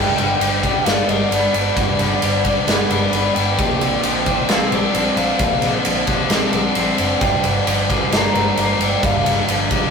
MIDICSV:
0, 0, Header, 1, 7, 480
1, 0, Start_track
1, 0, Tempo, 453858
1, 1869, Time_signature, 4, 2, 24, 8
1, 10474, End_track
2, 0, Start_track
2, 0, Title_t, "Soft synth lead"
2, 0, Program_c, 0, 80
2, 0, Note_on_c, 0, 79, 117
2, 896, Note_on_c, 0, 77, 101
2, 912, Note_off_c, 0, 79, 0
2, 1143, Note_on_c, 0, 75, 89
2, 1158, Note_off_c, 0, 77, 0
2, 1380, Note_on_c, 0, 74, 86
2, 1396, Note_off_c, 0, 75, 0
2, 1613, Note_off_c, 0, 74, 0
2, 3304, Note_on_c, 0, 74, 87
2, 3532, Note_on_c, 0, 79, 111
2, 3548, Note_off_c, 0, 74, 0
2, 4738, Note_on_c, 0, 77, 93
2, 4754, Note_off_c, 0, 79, 0
2, 4979, Note_on_c, 0, 72, 81
2, 4995, Note_off_c, 0, 77, 0
2, 5213, Note_on_c, 0, 74, 89
2, 5229, Note_off_c, 0, 72, 0
2, 5451, Note_on_c, 0, 77, 94
2, 5467, Note_off_c, 0, 74, 0
2, 7381, Note_off_c, 0, 77, 0
2, 7619, Note_on_c, 0, 79, 106
2, 8350, Note_on_c, 0, 80, 97
2, 8366, Note_off_c, 0, 79, 0
2, 8590, Note_on_c, 0, 82, 109
2, 8606, Note_off_c, 0, 80, 0
2, 9316, Note_on_c, 0, 79, 94
2, 9332, Note_off_c, 0, 82, 0
2, 9573, Note_on_c, 0, 77, 94
2, 9589, Note_off_c, 0, 79, 0
2, 10474, Note_off_c, 0, 77, 0
2, 10474, End_track
3, 0, Start_track
3, 0, Title_t, "Twelve-string acoustic guitar"
3, 0, Program_c, 1, 25
3, 0, Note_on_c, 1, 55, 72
3, 199, Note_on_c, 1, 59, 65
3, 426, Note_off_c, 1, 55, 0
3, 438, Note_on_c, 1, 55, 62
3, 671, Note_off_c, 1, 59, 0
3, 684, Note_on_c, 1, 59, 67
3, 922, Note_on_c, 1, 62, 85
3, 1145, Note_off_c, 1, 55, 0
3, 1158, Note_on_c, 1, 55, 60
3, 1384, Note_off_c, 1, 62, 0
3, 1389, Note_on_c, 1, 62, 81
3, 1618, Note_off_c, 1, 59, 0
3, 1631, Note_on_c, 1, 59, 67
3, 1862, Note_off_c, 1, 55, 0
3, 1875, Note_on_c, 1, 55, 78
3, 2093, Note_off_c, 1, 59, 0
3, 2106, Note_on_c, 1, 59, 69
3, 2334, Note_off_c, 1, 55, 0
3, 2347, Note_on_c, 1, 55, 61
3, 2581, Note_off_c, 1, 59, 0
3, 2593, Note_on_c, 1, 59, 67
3, 2820, Note_off_c, 1, 62, 0
3, 2825, Note_on_c, 1, 62, 82
3, 3054, Note_off_c, 1, 55, 0
3, 3067, Note_on_c, 1, 55, 64
3, 3307, Note_off_c, 1, 62, 0
3, 3311, Note_on_c, 1, 62, 78
3, 3543, Note_off_c, 1, 59, 0
3, 3556, Note_on_c, 1, 59, 66
3, 3785, Note_off_c, 1, 55, 0
3, 3789, Note_on_c, 1, 53, 84
3, 3794, Note_off_c, 1, 59, 0
3, 4033, Note_on_c, 1, 60, 65
3, 4064, Note_off_c, 1, 62, 0
3, 4272, Note_off_c, 1, 53, 0
3, 4277, Note_on_c, 1, 53, 65
3, 4504, Note_off_c, 1, 60, 0
3, 4517, Note_on_c, 1, 60, 71
3, 4753, Note_on_c, 1, 62, 87
3, 4988, Note_off_c, 1, 53, 0
3, 4993, Note_on_c, 1, 53, 65
3, 5240, Note_off_c, 1, 62, 0
3, 5244, Note_on_c, 1, 62, 82
3, 5464, Note_off_c, 1, 60, 0
3, 5476, Note_on_c, 1, 60, 69
3, 5707, Note_off_c, 1, 53, 0
3, 5712, Note_on_c, 1, 53, 73
3, 5936, Note_off_c, 1, 60, 0
3, 5948, Note_on_c, 1, 60, 65
3, 6194, Note_off_c, 1, 53, 0
3, 6198, Note_on_c, 1, 53, 62
3, 6424, Note_off_c, 1, 60, 0
3, 6436, Note_on_c, 1, 60, 59
3, 6468, Note_off_c, 1, 62, 0
3, 6677, Note_on_c, 1, 62, 77
3, 6912, Note_off_c, 1, 53, 0
3, 6916, Note_on_c, 1, 53, 56
3, 7146, Note_off_c, 1, 62, 0
3, 7150, Note_on_c, 1, 62, 76
3, 7391, Note_off_c, 1, 60, 0
3, 7404, Note_on_c, 1, 60, 67
3, 7636, Note_off_c, 1, 53, 0
3, 7637, Note_off_c, 1, 60, 0
3, 7640, Note_on_c, 1, 53, 69
3, 7874, Note_on_c, 1, 58, 65
3, 8118, Note_off_c, 1, 53, 0
3, 8122, Note_on_c, 1, 53, 63
3, 8358, Note_off_c, 1, 58, 0
3, 8363, Note_on_c, 1, 58, 57
3, 8604, Note_off_c, 1, 62, 0
3, 8609, Note_on_c, 1, 62, 77
3, 8845, Note_off_c, 1, 53, 0
3, 8849, Note_on_c, 1, 53, 65
3, 9082, Note_off_c, 1, 62, 0
3, 9086, Note_on_c, 1, 62, 75
3, 9318, Note_off_c, 1, 58, 0
3, 9322, Note_on_c, 1, 58, 62
3, 9548, Note_off_c, 1, 53, 0
3, 9553, Note_on_c, 1, 53, 76
3, 9796, Note_off_c, 1, 58, 0
3, 9800, Note_on_c, 1, 58, 67
3, 10026, Note_off_c, 1, 53, 0
3, 10031, Note_on_c, 1, 53, 61
3, 10267, Note_off_c, 1, 58, 0
3, 10272, Note_on_c, 1, 58, 66
3, 10474, Note_off_c, 1, 53, 0
3, 10474, Note_off_c, 1, 58, 0
3, 10474, Note_off_c, 1, 62, 0
3, 10474, End_track
4, 0, Start_track
4, 0, Title_t, "Overdriven electric guitar"
4, 0, Program_c, 2, 29
4, 0, Note_on_c, 2, 43, 72
4, 190, Note_on_c, 2, 50, 66
4, 411, Note_off_c, 2, 50, 0
4, 423, Note_on_c, 2, 50, 70
4, 668, Note_on_c, 2, 55, 60
4, 911, Note_on_c, 2, 59, 68
4, 1148, Note_off_c, 2, 43, 0
4, 1156, Note_on_c, 2, 62, 69
4, 1394, Note_off_c, 2, 59, 0
4, 1407, Note_on_c, 2, 59, 62
4, 1627, Note_off_c, 2, 50, 0
4, 1633, Note_off_c, 2, 62, 0
4, 1637, Note_on_c, 2, 62, 63
4, 1869, Note_off_c, 2, 55, 0
4, 1877, Note_on_c, 2, 43, 64
4, 2124, Note_on_c, 2, 50, 66
4, 2341, Note_off_c, 2, 50, 0
4, 2354, Note_on_c, 2, 50, 73
4, 2590, Note_on_c, 2, 55, 71
4, 2599, Note_off_c, 2, 59, 0
4, 2831, Note_on_c, 2, 59, 65
4, 3074, Note_off_c, 2, 62, 0
4, 3075, Note_off_c, 2, 43, 0
4, 3079, Note_on_c, 2, 62, 79
4, 3306, Note_off_c, 2, 59, 0
4, 3319, Note_on_c, 2, 59, 67
4, 3553, Note_off_c, 2, 50, 0
4, 3560, Note_off_c, 2, 62, 0
4, 3564, Note_on_c, 2, 62, 70
4, 3790, Note_on_c, 2, 46, 78
4, 3791, Note_off_c, 2, 55, 0
4, 3795, Note_off_c, 2, 59, 0
4, 4036, Note_on_c, 2, 50, 68
4, 4267, Note_off_c, 2, 50, 0
4, 4279, Note_on_c, 2, 50, 75
4, 4510, Note_on_c, 2, 53, 71
4, 4749, Note_on_c, 2, 60, 72
4, 4780, Note_off_c, 2, 62, 0
4, 4991, Note_off_c, 2, 46, 0
4, 4992, Note_on_c, 2, 62, 80
4, 5213, Note_off_c, 2, 60, 0
4, 5226, Note_on_c, 2, 60, 68
4, 5469, Note_off_c, 2, 62, 0
4, 5474, Note_on_c, 2, 62, 66
4, 5476, Note_off_c, 2, 50, 0
4, 5718, Note_on_c, 2, 46, 71
4, 5952, Note_on_c, 2, 50, 66
4, 6175, Note_off_c, 2, 50, 0
4, 6188, Note_on_c, 2, 50, 74
4, 6429, Note_off_c, 2, 60, 0
4, 6430, Note_off_c, 2, 53, 0
4, 6434, Note_on_c, 2, 53, 64
4, 6668, Note_on_c, 2, 60, 67
4, 6700, Note_off_c, 2, 62, 0
4, 6909, Note_on_c, 2, 62, 74
4, 6915, Note_off_c, 2, 46, 0
4, 7136, Note_off_c, 2, 60, 0
4, 7149, Note_on_c, 2, 60, 70
4, 7389, Note_off_c, 2, 50, 0
4, 7389, Note_off_c, 2, 62, 0
4, 7393, Note_on_c, 2, 62, 70
4, 7628, Note_on_c, 2, 43, 73
4, 7630, Note_off_c, 2, 60, 0
4, 7660, Note_off_c, 2, 53, 0
4, 7871, Note_on_c, 2, 50, 65
4, 8092, Note_off_c, 2, 50, 0
4, 8105, Note_on_c, 2, 50, 71
4, 8353, Note_on_c, 2, 53, 65
4, 8590, Note_on_c, 2, 58, 66
4, 8834, Note_off_c, 2, 62, 0
4, 8838, Note_on_c, 2, 62, 69
4, 9080, Note_off_c, 2, 58, 0
4, 9084, Note_on_c, 2, 58, 69
4, 9306, Note_off_c, 2, 50, 0
4, 9318, Note_off_c, 2, 62, 0
4, 9322, Note_on_c, 2, 62, 70
4, 9565, Note_off_c, 2, 43, 0
4, 9569, Note_on_c, 2, 43, 75
4, 9601, Note_off_c, 2, 53, 0
4, 9797, Note_on_c, 2, 50, 60
4, 10025, Note_off_c, 2, 50, 0
4, 10038, Note_on_c, 2, 50, 69
4, 10263, Note_on_c, 2, 53, 62
4, 10474, Note_off_c, 2, 43, 0
4, 10474, Note_off_c, 2, 50, 0
4, 10474, Note_off_c, 2, 53, 0
4, 10474, Note_off_c, 2, 58, 0
4, 10474, Note_off_c, 2, 62, 0
4, 10474, End_track
5, 0, Start_track
5, 0, Title_t, "Clean electric guitar"
5, 0, Program_c, 3, 27
5, 419, Note_on_c, 3, 55, 64
5, 671, Note_on_c, 3, 62, 64
5, 1139, Note_on_c, 3, 50, 68
5, 1611, Note_off_c, 3, 50, 0
5, 1624, Note_on_c, 3, 50, 71
5, 1625, Note_off_c, 3, 55, 0
5, 2086, Note_off_c, 3, 50, 0
5, 2345, Note_on_c, 3, 55, 67
5, 2579, Note_off_c, 3, 62, 0
5, 2583, Note_on_c, 3, 62, 75
5, 3068, Note_on_c, 3, 50, 68
5, 3532, Note_off_c, 3, 50, 0
5, 3545, Note_on_c, 3, 50, 67
5, 3549, Note_off_c, 3, 55, 0
5, 3788, Note_off_c, 3, 50, 0
5, 4257, Note_on_c, 3, 53, 72
5, 4502, Note_off_c, 3, 62, 0
5, 4506, Note_on_c, 3, 62, 63
5, 4979, Note_on_c, 3, 50, 65
5, 5465, Note_off_c, 3, 50, 0
5, 5478, Note_on_c, 3, 50, 67
5, 5938, Note_off_c, 3, 50, 0
5, 6192, Note_off_c, 3, 53, 0
5, 6196, Note_on_c, 3, 53, 70
5, 6431, Note_off_c, 3, 62, 0
5, 6435, Note_on_c, 3, 62, 69
5, 6905, Note_on_c, 3, 50, 66
5, 7373, Note_off_c, 3, 50, 0
5, 7386, Note_on_c, 3, 50, 62
5, 7629, Note_off_c, 3, 50, 0
5, 7649, Note_off_c, 3, 53, 0
5, 8111, Note_on_c, 3, 53, 69
5, 8347, Note_off_c, 3, 62, 0
5, 8352, Note_on_c, 3, 62, 62
5, 8835, Note_on_c, 3, 50, 65
5, 9303, Note_off_c, 3, 50, 0
5, 9316, Note_on_c, 3, 50, 67
5, 9580, Note_off_c, 3, 53, 0
5, 9783, Note_off_c, 3, 50, 0
5, 10017, Note_on_c, 3, 53, 76
5, 10269, Note_off_c, 3, 62, 0
5, 10274, Note_on_c, 3, 62, 66
5, 10474, Note_off_c, 3, 53, 0
5, 10474, Note_off_c, 3, 62, 0
5, 10474, End_track
6, 0, Start_track
6, 0, Title_t, "Picked electric bass"
6, 0, Program_c, 4, 34
6, 183, Note_on_c, 4, 31, 93
6, 337, Note_off_c, 4, 31, 0
6, 421, Note_on_c, 4, 31, 77
6, 728, Note_off_c, 4, 31, 0
6, 905, Note_on_c, 4, 31, 95
6, 1058, Note_off_c, 4, 31, 0
6, 1146, Note_on_c, 4, 31, 82
6, 1299, Note_off_c, 4, 31, 0
6, 1382, Note_on_c, 4, 31, 93
6, 1537, Note_off_c, 4, 31, 0
6, 1626, Note_on_c, 4, 31, 75
6, 1779, Note_off_c, 4, 31, 0
6, 1871, Note_on_c, 4, 31, 80
6, 2023, Note_off_c, 4, 31, 0
6, 2105, Note_on_c, 4, 31, 93
6, 2260, Note_off_c, 4, 31, 0
6, 2348, Note_on_c, 4, 31, 84
6, 2655, Note_off_c, 4, 31, 0
6, 2835, Note_on_c, 4, 31, 84
6, 2986, Note_off_c, 4, 31, 0
6, 3068, Note_on_c, 4, 31, 81
6, 3222, Note_off_c, 4, 31, 0
6, 3305, Note_on_c, 4, 31, 88
6, 3460, Note_off_c, 4, 31, 0
6, 3551, Note_on_c, 4, 31, 83
6, 3793, Note_off_c, 4, 31, 0
6, 3793, Note_on_c, 4, 34, 89
6, 3945, Note_off_c, 4, 34, 0
6, 4033, Note_on_c, 4, 34, 97
6, 4185, Note_off_c, 4, 34, 0
6, 4270, Note_on_c, 4, 34, 81
6, 4576, Note_off_c, 4, 34, 0
6, 4748, Note_on_c, 4, 34, 98
6, 4902, Note_off_c, 4, 34, 0
6, 4990, Note_on_c, 4, 34, 77
6, 5143, Note_off_c, 4, 34, 0
6, 5232, Note_on_c, 4, 34, 86
6, 5385, Note_off_c, 4, 34, 0
6, 5464, Note_on_c, 4, 34, 90
6, 5619, Note_off_c, 4, 34, 0
6, 5708, Note_on_c, 4, 34, 80
6, 5862, Note_off_c, 4, 34, 0
6, 5957, Note_on_c, 4, 34, 89
6, 6108, Note_off_c, 4, 34, 0
6, 6188, Note_on_c, 4, 34, 84
6, 6495, Note_off_c, 4, 34, 0
6, 6666, Note_on_c, 4, 34, 93
6, 6821, Note_off_c, 4, 34, 0
6, 6911, Note_on_c, 4, 34, 85
6, 7064, Note_off_c, 4, 34, 0
6, 7152, Note_on_c, 4, 34, 78
6, 7305, Note_off_c, 4, 34, 0
6, 7391, Note_on_c, 4, 30, 72
6, 7544, Note_off_c, 4, 30, 0
6, 7628, Note_on_c, 4, 31, 90
6, 7782, Note_off_c, 4, 31, 0
6, 7868, Note_on_c, 4, 31, 98
6, 8022, Note_off_c, 4, 31, 0
6, 8109, Note_on_c, 4, 31, 79
6, 8414, Note_off_c, 4, 31, 0
6, 8589, Note_on_c, 4, 31, 89
6, 8742, Note_off_c, 4, 31, 0
6, 8824, Note_on_c, 4, 31, 80
6, 8978, Note_off_c, 4, 31, 0
6, 9068, Note_on_c, 4, 31, 87
6, 9221, Note_off_c, 4, 31, 0
6, 9298, Note_on_c, 4, 31, 89
6, 9454, Note_off_c, 4, 31, 0
6, 9554, Note_on_c, 4, 31, 92
6, 9704, Note_off_c, 4, 31, 0
6, 9786, Note_on_c, 4, 31, 89
6, 9939, Note_off_c, 4, 31, 0
6, 10023, Note_on_c, 4, 31, 85
6, 10329, Note_off_c, 4, 31, 0
6, 10474, End_track
7, 0, Start_track
7, 0, Title_t, "Drums"
7, 192, Note_on_c, 9, 51, 61
7, 298, Note_off_c, 9, 51, 0
7, 435, Note_on_c, 9, 51, 88
7, 541, Note_off_c, 9, 51, 0
7, 670, Note_on_c, 9, 36, 70
7, 672, Note_on_c, 9, 51, 56
7, 776, Note_off_c, 9, 36, 0
7, 778, Note_off_c, 9, 51, 0
7, 911, Note_on_c, 9, 51, 92
7, 923, Note_on_c, 9, 38, 99
7, 1017, Note_off_c, 9, 51, 0
7, 1029, Note_off_c, 9, 38, 0
7, 1150, Note_on_c, 9, 51, 62
7, 1256, Note_off_c, 9, 51, 0
7, 1396, Note_on_c, 9, 51, 85
7, 1502, Note_off_c, 9, 51, 0
7, 1631, Note_on_c, 9, 51, 74
7, 1736, Note_off_c, 9, 51, 0
7, 1868, Note_on_c, 9, 36, 96
7, 1871, Note_on_c, 9, 51, 76
7, 1974, Note_off_c, 9, 36, 0
7, 1976, Note_off_c, 9, 51, 0
7, 2105, Note_on_c, 9, 51, 70
7, 2117, Note_on_c, 9, 38, 28
7, 2211, Note_off_c, 9, 51, 0
7, 2223, Note_off_c, 9, 38, 0
7, 2348, Note_on_c, 9, 51, 92
7, 2454, Note_off_c, 9, 51, 0
7, 2587, Note_on_c, 9, 51, 64
7, 2588, Note_on_c, 9, 36, 77
7, 2693, Note_off_c, 9, 51, 0
7, 2694, Note_off_c, 9, 36, 0
7, 2832, Note_on_c, 9, 51, 85
7, 2843, Note_on_c, 9, 38, 110
7, 2937, Note_off_c, 9, 51, 0
7, 2949, Note_off_c, 9, 38, 0
7, 3072, Note_on_c, 9, 51, 66
7, 3178, Note_off_c, 9, 51, 0
7, 3308, Note_on_c, 9, 51, 73
7, 3414, Note_off_c, 9, 51, 0
7, 3551, Note_on_c, 9, 51, 69
7, 3657, Note_off_c, 9, 51, 0
7, 3792, Note_on_c, 9, 51, 76
7, 3793, Note_on_c, 9, 36, 94
7, 3898, Note_off_c, 9, 51, 0
7, 3899, Note_off_c, 9, 36, 0
7, 4031, Note_on_c, 9, 51, 69
7, 4137, Note_off_c, 9, 51, 0
7, 4266, Note_on_c, 9, 51, 88
7, 4372, Note_off_c, 9, 51, 0
7, 4506, Note_on_c, 9, 51, 57
7, 4511, Note_on_c, 9, 36, 76
7, 4612, Note_off_c, 9, 51, 0
7, 4616, Note_off_c, 9, 36, 0
7, 4744, Note_on_c, 9, 51, 83
7, 4756, Note_on_c, 9, 38, 111
7, 4850, Note_off_c, 9, 51, 0
7, 4861, Note_off_c, 9, 38, 0
7, 4992, Note_on_c, 9, 51, 61
7, 5098, Note_off_c, 9, 51, 0
7, 5229, Note_on_c, 9, 51, 80
7, 5335, Note_off_c, 9, 51, 0
7, 5467, Note_on_c, 9, 51, 73
7, 5572, Note_off_c, 9, 51, 0
7, 5701, Note_on_c, 9, 51, 82
7, 5708, Note_on_c, 9, 36, 89
7, 5807, Note_off_c, 9, 51, 0
7, 5814, Note_off_c, 9, 36, 0
7, 5942, Note_on_c, 9, 51, 64
7, 5953, Note_on_c, 9, 38, 33
7, 6048, Note_off_c, 9, 51, 0
7, 6059, Note_off_c, 9, 38, 0
7, 6184, Note_on_c, 9, 51, 98
7, 6290, Note_off_c, 9, 51, 0
7, 6420, Note_on_c, 9, 51, 62
7, 6427, Note_on_c, 9, 36, 83
7, 6525, Note_off_c, 9, 51, 0
7, 6533, Note_off_c, 9, 36, 0
7, 6660, Note_on_c, 9, 51, 86
7, 6672, Note_on_c, 9, 38, 99
7, 6766, Note_off_c, 9, 51, 0
7, 6778, Note_off_c, 9, 38, 0
7, 6903, Note_on_c, 9, 51, 60
7, 7009, Note_off_c, 9, 51, 0
7, 7140, Note_on_c, 9, 51, 85
7, 7246, Note_off_c, 9, 51, 0
7, 7383, Note_on_c, 9, 51, 75
7, 7489, Note_off_c, 9, 51, 0
7, 7626, Note_on_c, 9, 51, 75
7, 7629, Note_on_c, 9, 36, 92
7, 7731, Note_off_c, 9, 51, 0
7, 7735, Note_off_c, 9, 36, 0
7, 7864, Note_on_c, 9, 51, 67
7, 7970, Note_off_c, 9, 51, 0
7, 8112, Note_on_c, 9, 51, 92
7, 8218, Note_off_c, 9, 51, 0
7, 8352, Note_on_c, 9, 36, 78
7, 8355, Note_on_c, 9, 51, 58
7, 8458, Note_off_c, 9, 36, 0
7, 8460, Note_off_c, 9, 51, 0
7, 8591, Note_on_c, 9, 51, 85
7, 8603, Note_on_c, 9, 38, 112
7, 8697, Note_off_c, 9, 51, 0
7, 8708, Note_off_c, 9, 38, 0
7, 8834, Note_on_c, 9, 51, 59
7, 8940, Note_off_c, 9, 51, 0
7, 9068, Note_on_c, 9, 51, 76
7, 9174, Note_off_c, 9, 51, 0
7, 9313, Note_on_c, 9, 51, 70
7, 9418, Note_off_c, 9, 51, 0
7, 9550, Note_on_c, 9, 51, 79
7, 9551, Note_on_c, 9, 36, 100
7, 9656, Note_off_c, 9, 51, 0
7, 9657, Note_off_c, 9, 36, 0
7, 9794, Note_on_c, 9, 51, 72
7, 9805, Note_on_c, 9, 38, 30
7, 9899, Note_off_c, 9, 51, 0
7, 9911, Note_off_c, 9, 38, 0
7, 10030, Note_on_c, 9, 51, 90
7, 10136, Note_off_c, 9, 51, 0
7, 10265, Note_on_c, 9, 51, 67
7, 10268, Note_on_c, 9, 36, 80
7, 10371, Note_off_c, 9, 51, 0
7, 10373, Note_off_c, 9, 36, 0
7, 10474, End_track
0, 0, End_of_file